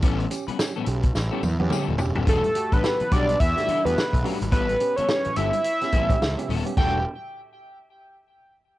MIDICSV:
0, 0, Header, 1, 8, 480
1, 0, Start_track
1, 0, Tempo, 561272
1, 28, Time_signature, 4, 2, 24, 8
1, 7514, End_track
2, 0, Start_track
2, 0, Title_t, "Analog synth lead"
2, 0, Program_c, 0, 81
2, 1957, Note_on_c, 0, 69, 98
2, 2334, Note_on_c, 0, 71, 88
2, 2347, Note_off_c, 0, 69, 0
2, 2670, Note_on_c, 0, 74, 109
2, 2683, Note_off_c, 0, 71, 0
2, 2905, Note_on_c, 0, 76, 127
2, 2918, Note_off_c, 0, 74, 0
2, 3292, Note_on_c, 0, 71, 99
2, 3305, Note_off_c, 0, 76, 0
2, 3628, Note_off_c, 0, 71, 0
2, 3866, Note_on_c, 0, 71, 97
2, 4244, Note_on_c, 0, 73, 92
2, 4257, Note_off_c, 0, 71, 0
2, 4588, Note_on_c, 0, 76, 126
2, 4601, Note_off_c, 0, 73, 0
2, 5549, Note_off_c, 0, 76, 0
2, 5794, Note_on_c, 0, 79, 92
2, 6015, Note_off_c, 0, 79, 0
2, 7514, End_track
3, 0, Start_track
3, 0, Title_t, "Clean electric guitar"
3, 0, Program_c, 1, 27
3, 24, Note_on_c, 1, 55, 92
3, 28, Note_on_c, 1, 59, 93
3, 35, Note_on_c, 1, 61, 103
3, 41, Note_on_c, 1, 69, 90
3, 211, Note_off_c, 1, 55, 0
3, 213, Note_off_c, 1, 59, 0
3, 217, Note_off_c, 1, 61, 0
3, 220, Note_off_c, 1, 69, 0
3, 407, Note_on_c, 1, 71, 64
3, 411, Note_on_c, 1, 61, 65
3, 416, Note_on_c, 1, 59, 52
3, 424, Note_on_c, 1, 55, 53
3, 495, Note_off_c, 1, 55, 0
3, 500, Note_off_c, 1, 59, 0
3, 502, Note_off_c, 1, 61, 0
3, 514, Note_off_c, 1, 71, 0
3, 649, Note_on_c, 1, 69, 73
3, 655, Note_on_c, 1, 61, 79
3, 662, Note_on_c, 1, 59, 71
3, 665, Note_on_c, 1, 55, 65
3, 732, Note_off_c, 1, 55, 0
3, 740, Note_off_c, 1, 59, 0
3, 743, Note_off_c, 1, 61, 0
3, 745, Note_off_c, 1, 69, 0
3, 1123, Note_on_c, 1, 69, 92
3, 1130, Note_on_c, 1, 61, 96
3, 1137, Note_on_c, 1, 59, 83
3, 1139, Note_on_c, 1, 55, 68
3, 1212, Note_off_c, 1, 55, 0
3, 1216, Note_off_c, 1, 59, 0
3, 1221, Note_off_c, 1, 61, 0
3, 1224, Note_off_c, 1, 69, 0
3, 1457, Note_on_c, 1, 55, 87
3, 1462, Note_on_c, 1, 59, 85
3, 1468, Note_on_c, 1, 61, 91
3, 1474, Note_on_c, 1, 69, 108
3, 1647, Note_off_c, 1, 55, 0
3, 1650, Note_off_c, 1, 59, 0
3, 1653, Note_off_c, 1, 61, 0
3, 1656, Note_off_c, 1, 69, 0
3, 1843, Note_on_c, 1, 69, 64
3, 1850, Note_on_c, 1, 61, 74
3, 1856, Note_on_c, 1, 59, 67
3, 1862, Note_on_c, 1, 55, 55
3, 1929, Note_off_c, 1, 55, 0
3, 1939, Note_on_c, 1, 55, 89
3, 1941, Note_off_c, 1, 59, 0
3, 1944, Note_off_c, 1, 69, 0
3, 1944, Note_on_c, 1, 62, 94
3, 1948, Note_off_c, 1, 61, 0
3, 1951, Note_on_c, 1, 66, 102
3, 1954, Note_on_c, 1, 69, 102
3, 2073, Note_off_c, 1, 69, 0
3, 2083, Note_off_c, 1, 62, 0
3, 2083, Note_off_c, 1, 66, 0
3, 2128, Note_off_c, 1, 55, 0
3, 2325, Note_on_c, 1, 69, 59
3, 2332, Note_on_c, 1, 66, 51
3, 2338, Note_on_c, 1, 62, 50
3, 2344, Note_on_c, 1, 55, 51
3, 2441, Note_off_c, 1, 69, 0
3, 2445, Note_off_c, 1, 66, 0
3, 2447, Note_off_c, 1, 62, 0
3, 2450, Note_off_c, 1, 55, 0
3, 2663, Note_on_c, 1, 55, 84
3, 2667, Note_on_c, 1, 62, 87
3, 2674, Note_on_c, 1, 66, 85
3, 2678, Note_on_c, 1, 71, 102
3, 2803, Note_off_c, 1, 66, 0
3, 2803, Note_off_c, 1, 71, 0
3, 2811, Note_off_c, 1, 62, 0
3, 2850, Note_off_c, 1, 55, 0
3, 3134, Note_on_c, 1, 55, 80
3, 3142, Note_on_c, 1, 62, 95
3, 3148, Note_on_c, 1, 66, 90
3, 3153, Note_on_c, 1, 69, 87
3, 3274, Note_off_c, 1, 69, 0
3, 3283, Note_off_c, 1, 66, 0
3, 3289, Note_off_c, 1, 62, 0
3, 3326, Note_off_c, 1, 55, 0
3, 3625, Note_on_c, 1, 55, 72
3, 3633, Note_on_c, 1, 62, 67
3, 3638, Note_on_c, 1, 66, 76
3, 3642, Note_on_c, 1, 71, 76
3, 3767, Note_off_c, 1, 66, 0
3, 3768, Note_off_c, 1, 71, 0
3, 3772, Note_off_c, 1, 62, 0
3, 3811, Note_off_c, 1, 55, 0
3, 3860, Note_on_c, 1, 55, 97
3, 3867, Note_on_c, 1, 59, 99
3, 3874, Note_on_c, 1, 61, 97
3, 3877, Note_on_c, 1, 69, 102
3, 4000, Note_off_c, 1, 69, 0
3, 4005, Note_off_c, 1, 61, 0
3, 4010, Note_off_c, 1, 59, 0
3, 4049, Note_off_c, 1, 55, 0
3, 4252, Note_on_c, 1, 69, 62
3, 4259, Note_on_c, 1, 61, 54
3, 4265, Note_on_c, 1, 59, 59
3, 4270, Note_on_c, 1, 55, 48
3, 4365, Note_off_c, 1, 69, 0
3, 4369, Note_off_c, 1, 61, 0
3, 4371, Note_off_c, 1, 59, 0
3, 4374, Note_off_c, 1, 55, 0
3, 4587, Note_on_c, 1, 55, 85
3, 4592, Note_on_c, 1, 59, 85
3, 4601, Note_on_c, 1, 61, 86
3, 4603, Note_on_c, 1, 69, 98
3, 4725, Note_off_c, 1, 69, 0
3, 4731, Note_off_c, 1, 61, 0
3, 4737, Note_off_c, 1, 59, 0
3, 4772, Note_off_c, 1, 55, 0
3, 5063, Note_on_c, 1, 55, 85
3, 5070, Note_on_c, 1, 59, 89
3, 5076, Note_on_c, 1, 61, 81
3, 5083, Note_on_c, 1, 69, 87
3, 5203, Note_off_c, 1, 69, 0
3, 5210, Note_off_c, 1, 61, 0
3, 5216, Note_off_c, 1, 59, 0
3, 5251, Note_off_c, 1, 55, 0
3, 5550, Note_on_c, 1, 55, 74
3, 5556, Note_on_c, 1, 59, 79
3, 5562, Note_on_c, 1, 61, 87
3, 5567, Note_on_c, 1, 69, 79
3, 5691, Note_off_c, 1, 69, 0
3, 5696, Note_off_c, 1, 61, 0
3, 5703, Note_off_c, 1, 59, 0
3, 5735, Note_off_c, 1, 55, 0
3, 5798, Note_on_c, 1, 55, 93
3, 5803, Note_on_c, 1, 62, 89
3, 5805, Note_on_c, 1, 66, 81
3, 5808, Note_on_c, 1, 69, 95
3, 5956, Note_off_c, 1, 55, 0
3, 5959, Note_off_c, 1, 62, 0
3, 5960, Note_off_c, 1, 66, 0
3, 5962, Note_off_c, 1, 69, 0
3, 7514, End_track
4, 0, Start_track
4, 0, Title_t, "Tine electric piano"
4, 0, Program_c, 2, 4
4, 26, Note_on_c, 2, 45, 65
4, 27, Note_on_c, 2, 52, 54
4, 138, Note_off_c, 2, 45, 0
4, 138, Note_off_c, 2, 52, 0
4, 262, Note_on_c, 2, 61, 70
4, 267, Note_on_c, 2, 67, 74
4, 376, Note_off_c, 2, 61, 0
4, 378, Note_off_c, 2, 67, 0
4, 500, Note_on_c, 2, 61, 67
4, 505, Note_on_c, 2, 67, 70
4, 615, Note_off_c, 2, 61, 0
4, 617, Note_off_c, 2, 67, 0
4, 652, Note_on_c, 2, 45, 65
4, 652, Note_on_c, 2, 52, 60
4, 725, Note_off_c, 2, 52, 0
4, 726, Note_off_c, 2, 45, 0
4, 744, Note_on_c, 2, 61, 64
4, 748, Note_on_c, 2, 67, 70
4, 856, Note_off_c, 2, 61, 0
4, 858, Note_off_c, 2, 67, 0
4, 1130, Note_on_c, 2, 59, 77
4, 1131, Note_on_c, 2, 61, 66
4, 1136, Note_on_c, 2, 67, 82
4, 1204, Note_off_c, 2, 59, 0
4, 1205, Note_off_c, 2, 61, 0
4, 1207, Note_off_c, 2, 67, 0
4, 1224, Note_on_c, 2, 45, 63
4, 1226, Note_on_c, 2, 52, 66
4, 1336, Note_off_c, 2, 45, 0
4, 1338, Note_off_c, 2, 52, 0
4, 1369, Note_on_c, 2, 59, 82
4, 1373, Note_on_c, 2, 61, 74
4, 1373, Note_on_c, 2, 67, 80
4, 1444, Note_off_c, 2, 59, 0
4, 1446, Note_off_c, 2, 61, 0
4, 1446, Note_off_c, 2, 67, 0
4, 1461, Note_on_c, 2, 61, 66
4, 1466, Note_on_c, 2, 67, 77
4, 1575, Note_off_c, 2, 61, 0
4, 1577, Note_off_c, 2, 67, 0
4, 1606, Note_on_c, 2, 45, 52
4, 1606, Note_on_c, 2, 52, 58
4, 1683, Note_off_c, 2, 45, 0
4, 1683, Note_off_c, 2, 52, 0
4, 1704, Note_on_c, 2, 61, 65
4, 1709, Note_on_c, 2, 67, 77
4, 1816, Note_off_c, 2, 61, 0
4, 1819, Note_off_c, 2, 67, 0
4, 1948, Note_on_c, 2, 52, 64
4, 2058, Note_off_c, 2, 52, 0
4, 2187, Note_on_c, 2, 66, 71
4, 2192, Note_on_c, 2, 67, 78
4, 2298, Note_off_c, 2, 66, 0
4, 2300, Note_off_c, 2, 67, 0
4, 2425, Note_on_c, 2, 66, 64
4, 2431, Note_on_c, 2, 67, 78
4, 2537, Note_off_c, 2, 66, 0
4, 2540, Note_off_c, 2, 67, 0
4, 2577, Note_on_c, 2, 52, 62
4, 2648, Note_off_c, 2, 52, 0
4, 2667, Note_on_c, 2, 66, 72
4, 2673, Note_on_c, 2, 67, 72
4, 2778, Note_off_c, 2, 66, 0
4, 2781, Note_off_c, 2, 67, 0
4, 3049, Note_on_c, 2, 57, 71
4, 3052, Note_on_c, 2, 62, 60
4, 3052, Note_on_c, 2, 66, 69
4, 3054, Note_on_c, 2, 67, 75
4, 3124, Note_off_c, 2, 57, 0
4, 3125, Note_off_c, 2, 62, 0
4, 3126, Note_off_c, 2, 66, 0
4, 3126, Note_off_c, 2, 67, 0
4, 3146, Note_on_c, 2, 52, 67
4, 3258, Note_off_c, 2, 52, 0
4, 3287, Note_on_c, 2, 57, 80
4, 3290, Note_on_c, 2, 62, 78
4, 3291, Note_on_c, 2, 66, 77
4, 3292, Note_on_c, 2, 67, 87
4, 3363, Note_off_c, 2, 57, 0
4, 3365, Note_off_c, 2, 62, 0
4, 3365, Note_off_c, 2, 66, 0
4, 3366, Note_off_c, 2, 67, 0
4, 3387, Note_on_c, 2, 67, 44
4, 3388, Note_on_c, 2, 66, 42
4, 3445, Note_off_c, 2, 66, 0
4, 3445, Note_off_c, 2, 67, 0
4, 3530, Note_on_c, 2, 52, 52
4, 3604, Note_off_c, 2, 52, 0
4, 3625, Note_on_c, 2, 57, 72
4, 3626, Note_on_c, 2, 62, 74
4, 3628, Note_on_c, 2, 66, 67
4, 3632, Note_on_c, 2, 67, 85
4, 3737, Note_off_c, 2, 57, 0
4, 3738, Note_off_c, 2, 62, 0
4, 3739, Note_off_c, 2, 66, 0
4, 3740, Note_off_c, 2, 67, 0
4, 3869, Note_on_c, 2, 45, 61
4, 3870, Note_on_c, 2, 52, 63
4, 3979, Note_off_c, 2, 45, 0
4, 3980, Note_off_c, 2, 52, 0
4, 4107, Note_on_c, 2, 61, 72
4, 4114, Note_on_c, 2, 67, 75
4, 4218, Note_off_c, 2, 61, 0
4, 4222, Note_off_c, 2, 67, 0
4, 4352, Note_on_c, 2, 61, 67
4, 4357, Note_on_c, 2, 67, 75
4, 4460, Note_off_c, 2, 61, 0
4, 4463, Note_off_c, 2, 67, 0
4, 4494, Note_on_c, 2, 45, 59
4, 4495, Note_on_c, 2, 52, 62
4, 4567, Note_off_c, 2, 45, 0
4, 4567, Note_off_c, 2, 52, 0
4, 4589, Note_on_c, 2, 61, 70
4, 4594, Note_on_c, 2, 67, 75
4, 4699, Note_off_c, 2, 61, 0
4, 4702, Note_off_c, 2, 67, 0
4, 4972, Note_on_c, 2, 59, 74
4, 4975, Note_on_c, 2, 61, 71
4, 4979, Note_on_c, 2, 67, 71
4, 5046, Note_off_c, 2, 59, 0
4, 5048, Note_off_c, 2, 61, 0
4, 5049, Note_off_c, 2, 67, 0
4, 5073, Note_on_c, 2, 45, 59
4, 5073, Note_on_c, 2, 52, 59
4, 5181, Note_off_c, 2, 45, 0
4, 5181, Note_off_c, 2, 52, 0
4, 5213, Note_on_c, 2, 59, 80
4, 5215, Note_on_c, 2, 61, 78
4, 5217, Note_on_c, 2, 67, 93
4, 5286, Note_off_c, 2, 59, 0
4, 5288, Note_off_c, 2, 61, 0
4, 5289, Note_off_c, 2, 67, 0
4, 5454, Note_on_c, 2, 59, 67
4, 5457, Note_on_c, 2, 61, 68
4, 5458, Note_on_c, 2, 67, 81
4, 5527, Note_off_c, 2, 59, 0
4, 5528, Note_off_c, 2, 61, 0
4, 5529, Note_off_c, 2, 67, 0
4, 5550, Note_on_c, 2, 52, 59
4, 5551, Note_on_c, 2, 45, 60
4, 5660, Note_off_c, 2, 45, 0
4, 5660, Note_off_c, 2, 52, 0
4, 5693, Note_on_c, 2, 59, 74
4, 5694, Note_on_c, 2, 61, 69
4, 5698, Note_on_c, 2, 67, 80
4, 5767, Note_off_c, 2, 59, 0
4, 5767, Note_off_c, 2, 61, 0
4, 5769, Note_off_c, 2, 67, 0
4, 5787, Note_on_c, 2, 55, 71
4, 5789, Note_on_c, 2, 57, 71
4, 5794, Note_on_c, 2, 62, 74
4, 5796, Note_on_c, 2, 66, 98
4, 5975, Note_off_c, 2, 55, 0
4, 5976, Note_off_c, 2, 57, 0
4, 5979, Note_off_c, 2, 62, 0
4, 5980, Note_off_c, 2, 66, 0
4, 7514, End_track
5, 0, Start_track
5, 0, Title_t, "Picked electric bass"
5, 0, Program_c, 3, 34
5, 28, Note_on_c, 3, 33, 108
5, 214, Note_off_c, 3, 33, 0
5, 745, Note_on_c, 3, 35, 86
5, 932, Note_off_c, 3, 35, 0
5, 987, Note_on_c, 3, 33, 99
5, 1099, Note_off_c, 3, 33, 0
5, 1224, Note_on_c, 3, 40, 89
5, 1337, Note_off_c, 3, 40, 0
5, 1369, Note_on_c, 3, 40, 94
5, 1444, Note_off_c, 3, 40, 0
5, 1611, Note_on_c, 3, 27, 80
5, 1686, Note_off_c, 3, 27, 0
5, 1708, Note_on_c, 3, 28, 90
5, 1819, Note_off_c, 3, 28, 0
5, 1852, Note_on_c, 3, 27, 81
5, 1926, Note_off_c, 3, 27, 0
5, 1944, Note_on_c, 3, 28, 102
5, 2057, Note_off_c, 3, 28, 0
5, 2330, Note_on_c, 3, 33, 83
5, 2405, Note_off_c, 3, 33, 0
5, 2669, Note_on_c, 3, 35, 93
5, 2854, Note_off_c, 3, 35, 0
5, 2911, Note_on_c, 3, 40, 109
5, 3021, Note_off_c, 3, 40, 0
5, 3297, Note_on_c, 3, 40, 91
5, 3369, Note_off_c, 3, 40, 0
5, 3536, Note_on_c, 3, 35, 89
5, 3608, Note_off_c, 3, 35, 0
5, 3777, Note_on_c, 3, 32, 84
5, 3869, Note_off_c, 3, 32, 0
5, 3869, Note_on_c, 3, 33, 92
5, 4055, Note_off_c, 3, 33, 0
5, 4594, Note_on_c, 3, 31, 79
5, 4703, Note_off_c, 3, 31, 0
5, 5072, Note_on_c, 3, 33, 90
5, 5257, Note_off_c, 3, 33, 0
5, 5316, Note_on_c, 3, 37, 76
5, 5425, Note_off_c, 3, 37, 0
5, 5553, Note_on_c, 3, 27, 94
5, 5663, Note_off_c, 3, 27, 0
5, 5791, Note_on_c, 3, 28, 88
5, 6013, Note_off_c, 3, 28, 0
5, 7514, End_track
6, 0, Start_track
6, 0, Title_t, "Muted clean electric guitar strokes"
6, 269, Note_on_c, 9, 29, 37
6, 355, Note_off_c, 9, 29, 0
6, 505, Note_on_c, 9, 29, 37
6, 591, Note_off_c, 9, 29, 0
6, 743, Note_on_c, 9, 29, 45
6, 828, Note_off_c, 9, 29, 0
6, 887, Note_on_c, 9, 29, 57
6, 972, Note_off_c, 9, 29, 0
6, 988, Note_on_c, 9, 29, 49
6, 1074, Note_off_c, 9, 29, 0
6, 1222, Note_on_c, 9, 29, 40
6, 1308, Note_off_c, 9, 29, 0
6, 1359, Note_on_c, 9, 29, 36
6, 1445, Note_off_c, 9, 29, 0
6, 1711, Note_on_c, 9, 29, 34
6, 1796, Note_off_c, 9, 29, 0
6, 2083, Note_on_c, 9, 29, 46
6, 2169, Note_off_c, 9, 29, 0
6, 2182, Note_on_c, 9, 29, 45
6, 2267, Note_off_c, 9, 29, 0
6, 2567, Note_on_c, 9, 29, 53
6, 2653, Note_off_c, 9, 29, 0
6, 2807, Note_on_c, 9, 29, 45
6, 2892, Note_off_c, 9, 29, 0
6, 3051, Note_on_c, 9, 29, 49
6, 3137, Note_off_c, 9, 29, 0
6, 3284, Note_on_c, 9, 29, 43
6, 3370, Note_off_c, 9, 29, 0
6, 3380, Note_on_c, 9, 29, 44
6, 3466, Note_off_c, 9, 29, 0
6, 3530, Note_on_c, 9, 29, 53
6, 3616, Note_off_c, 9, 29, 0
6, 3771, Note_on_c, 9, 29, 48
6, 3857, Note_off_c, 9, 29, 0
6, 4011, Note_on_c, 9, 29, 51
6, 4096, Note_off_c, 9, 29, 0
6, 4110, Note_on_c, 9, 29, 36
6, 4196, Note_off_c, 9, 29, 0
6, 4490, Note_on_c, 9, 29, 55
6, 4575, Note_off_c, 9, 29, 0
6, 4735, Note_on_c, 9, 29, 48
6, 4821, Note_off_c, 9, 29, 0
6, 4973, Note_on_c, 9, 29, 42
6, 5058, Note_off_c, 9, 29, 0
6, 5214, Note_on_c, 9, 29, 46
6, 5299, Note_off_c, 9, 29, 0
6, 5310, Note_on_c, 9, 29, 38
6, 5395, Note_off_c, 9, 29, 0
6, 5458, Note_on_c, 9, 29, 46
6, 5544, Note_off_c, 9, 29, 0
6, 5701, Note_on_c, 9, 29, 53
6, 5786, Note_off_c, 9, 29, 0
6, 7514, End_track
7, 0, Start_track
7, 0, Title_t, "Muted picked electric bass strokes"
7, 409, Note_on_c, 9, 29, 48
7, 495, Note_off_c, 9, 29, 0
7, 2573, Note_on_c, 9, 29, 52
7, 2659, Note_off_c, 9, 29, 0
7, 3150, Note_on_c, 9, 29, 44
7, 3236, Note_off_c, 9, 29, 0
7, 3393, Note_on_c, 9, 29, 46
7, 3479, Note_off_c, 9, 29, 0
7, 4261, Note_on_c, 9, 29, 52
7, 4346, Note_off_c, 9, 29, 0
7, 4501, Note_on_c, 9, 29, 49
7, 4586, Note_off_c, 9, 29, 0
7, 7514, End_track
8, 0, Start_track
8, 0, Title_t, "Drums"
8, 19, Note_on_c, 9, 42, 87
8, 25, Note_on_c, 9, 36, 121
8, 105, Note_off_c, 9, 42, 0
8, 110, Note_off_c, 9, 36, 0
8, 168, Note_on_c, 9, 42, 33
8, 254, Note_off_c, 9, 42, 0
8, 262, Note_on_c, 9, 42, 89
8, 274, Note_on_c, 9, 54, 66
8, 348, Note_off_c, 9, 42, 0
8, 359, Note_off_c, 9, 54, 0
8, 409, Note_on_c, 9, 42, 53
8, 495, Note_off_c, 9, 42, 0
8, 506, Note_on_c, 9, 38, 119
8, 514, Note_on_c, 9, 54, 90
8, 591, Note_off_c, 9, 38, 0
8, 600, Note_off_c, 9, 54, 0
8, 737, Note_on_c, 9, 42, 90
8, 822, Note_off_c, 9, 42, 0
8, 882, Note_on_c, 9, 42, 53
8, 887, Note_on_c, 9, 36, 89
8, 967, Note_off_c, 9, 42, 0
8, 972, Note_off_c, 9, 36, 0
8, 984, Note_on_c, 9, 38, 63
8, 986, Note_on_c, 9, 54, 58
8, 1069, Note_off_c, 9, 38, 0
8, 1072, Note_off_c, 9, 54, 0
8, 1222, Note_on_c, 9, 48, 74
8, 1223, Note_on_c, 9, 54, 55
8, 1308, Note_off_c, 9, 48, 0
8, 1309, Note_off_c, 9, 54, 0
8, 1364, Note_on_c, 9, 48, 64
8, 1450, Note_off_c, 9, 48, 0
8, 1455, Note_on_c, 9, 47, 84
8, 1475, Note_on_c, 9, 54, 96
8, 1540, Note_off_c, 9, 47, 0
8, 1560, Note_off_c, 9, 54, 0
8, 1696, Note_on_c, 9, 43, 109
8, 1702, Note_on_c, 9, 54, 68
8, 1782, Note_off_c, 9, 43, 0
8, 1787, Note_off_c, 9, 54, 0
8, 1842, Note_on_c, 9, 43, 94
8, 1927, Note_off_c, 9, 43, 0
8, 1940, Note_on_c, 9, 42, 98
8, 1943, Note_on_c, 9, 36, 118
8, 2026, Note_off_c, 9, 42, 0
8, 2028, Note_off_c, 9, 36, 0
8, 2085, Note_on_c, 9, 42, 51
8, 2171, Note_off_c, 9, 42, 0
8, 2180, Note_on_c, 9, 42, 81
8, 2266, Note_off_c, 9, 42, 0
8, 2327, Note_on_c, 9, 42, 46
8, 2328, Note_on_c, 9, 36, 98
8, 2413, Note_off_c, 9, 42, 0
8, 2414, Note_off_c, 9, 36, 0
8, 2427, Note_on_c, 9, 38, 112
8, 2512, Note_off_c, 9, 38, 0
8, 2563, Note_on_c, 9, 42, 42
8, 2649, Note_off_c, 9, 42, 0
8, 2663, Note_on_c, 9, 42, 92
8, 2666, Note_on_c, 9, 36, 102
8, 2749, Note_off_c, 9, 42, 0
8, 2752, Note_off_c, 9, 36, 0
8, 2812, Note_on_c, 9, 42, 54
8, 2897, Note_off_c, 9, 42, 0
8, 2907, Note_on_c, 9, 42, 86
8, 2909, Note_on_c, 9, 36, 99
8, 2992, Note_off_c, 9, 42, 0
8, 2995, Note_off_c, 9, 36, 0
8, 3058, Note_on_c, 9, 42, 47
8, 3063, Note_on_c, 9, 38, 33
8, 3144, Note_off_c, 9, 42, 0
8, 3148, Note_off_c, 9, 38, 0
8, 3151, Note_on_c, 9, 42, 63
8, 3236, Note_off_c, 9, 42, 0
8, 3301, Note_on_c, 9, 42, 51
8, 3387, Note_off_c, 9, 42, 0
8, 3404, Note_on_c, 9, 38, 114
8, 3490, Note_off_c, 9, 38, 0
8, 3535, Note_on_c, 9, 36, 93
8, 3541, Note_on_c, 9, 42, 61
8, 3620, Note_off_c, 9, 36, 0
8, 3627, Note_off_c, 9, 42, 0
8, 3636, Note_on_c, 9, 46, 75
8, 3722, Note_off_c, 9, 46, 0
8, 3774, Note_on_c, 9, 42, 51
8, 3860, Note_off_c, 9, 42, 0
8, 3865, Note_on_c, 9, 42, 94
8, 3867, Note_on_c, 9, 36, 117
8, 3950, Note_off_c, 9, 42, 0
8, 3953, Note_off_c, 9, 36, 0
8, 4010, Note_on_c, 9, 42, 55
8, 4096, Note_off_c, 9, 42, 0
8, 4106, Note_on_c, 9, 42, 76
8, 4191, Note_off_c, 9, 42, 0
8, 4252, Note_on_c, 9, 42, 50
8, 4338, Note_off_c, 9, 42, 0
8, 4350, Note_on_c, 9, 38, 114
8, 4435, Note_off_c, 9, 38, 0
8, 4485, Note_on_c, 9, 42, 41
8, 4571, Note_off_c, 9, 42, 0
8, 4584, Note_on_c, 9, 42, 81
8, 4670, Note_off_c, 9, 42, 0
8, 4730, Note_on_c, 9, 42, 53
8, 4815, Note_off_c, 9, 42, 0
8, 4825, Note_on_c, 9, 42, 84
8, 4911, Note_off_c, 9, 42, 0
8, 4971, Note_on_c, 9, 42, 46
8, 4975, Note_on_c, 9, 38, 30
8, 5056, Note_off_c, 9, 42, 0
8, 5061, Note_off_c, 9, 38, 0
8, 5065, Note_on_c, 9, 42, 70
8, 5069, Note_on_c, 9, 36, 80
8, 5151, Note_off_c, 9, 42, 0
8, 5155, Note_off_c, 9, 36, 0
8, 5213, Note_on_c, 9, 36, 88
8, 5215, Note_on_c, 9, 42, 54
8, 5298, Note_off_c, 9, 36, 0
8, 5300, Note_off_c, 9, 42, 0
8, 5320, Note_on_c, 9, 38, 107
8, 5406, Note_off_c, 9, 38, 0
8, 5462, Note_on_c, 9, 42, 59
8, 5547, Note_off_c, 9, 42, 0
8, 5558, Note_on_c, 9, 46, 72
8, 5644, Note_off_c, 9, 46, 0
8, 5700, Note_on_c, 9, 42, 54
8, 5785, Note_off_c, 9, 42, 0
8, 5791, Note_on_c, 9, 36, 106
8, 5792, Note_on_c, 9, 49, 86
8, 5877, Note_off_c, 9, 36, 0
8, 5877, Note_off_c, 9, 49, 0
8, 7514, End_track
0, 0, End_of_file